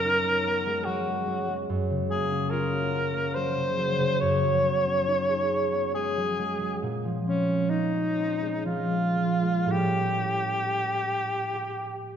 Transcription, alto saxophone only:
0.00 0.86 A#4 medium
0.85 1.69 F#4 medium
2.10 2.52 G#4 medium
2.50 3.36 A#4 medium
3.35 4.22 C5 medium
4.20 5.94 C#5 medium
5.95 6.81 G#4 medium
7.26 7.71 C#4 medium
7.70 8.65 D#4 medium
8.65 9.73 F4 medium
9.71 12.17 G4 medium

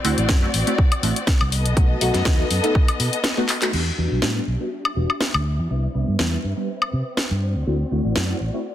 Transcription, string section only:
0.00 1.49 C4 medium
0.00 1.50 F#4 medium
0.00 1.50 D5 medium
1.52 3.71 B3 medium
1.52 3.71 A4 medium
1.52 3.71 D#5 medium
3.74 5.68 D4 medium
3.74 5.68 G4 medium
3.74 7.39 E5 medium
5.71 8.75 C4 medium
5.71 7.41 B4 medium
7.43 8.75 F#4 medium
7.43 8.75 D5 medium

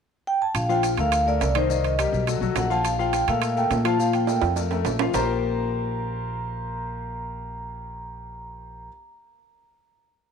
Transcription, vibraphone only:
0.27 0.42 G5 loud
0.42 0.55 A5 loud
0.56 0.69 F5 loud
0.70 0.96 G5 medium
1.00 1.26 F5 medium
1.28 1.57 D5 loud
1.57 1.70 C5 medium
1.71 1.85 C5 medium
1.85 2.25 D#5 medium
2.58 2.72 F#5 medium
2.71 2.86 A5 loud
2.86 2.92 F5 medium
3.00 3.29 G5 medium
3.29 3.58 F5 medium
3.58 3.86 G5 loud
3.86 4.00 A5 medium
4.00 4.14 F5 medium
4.15 4.54 G5 medium
5.15 8.88 A#5 medium

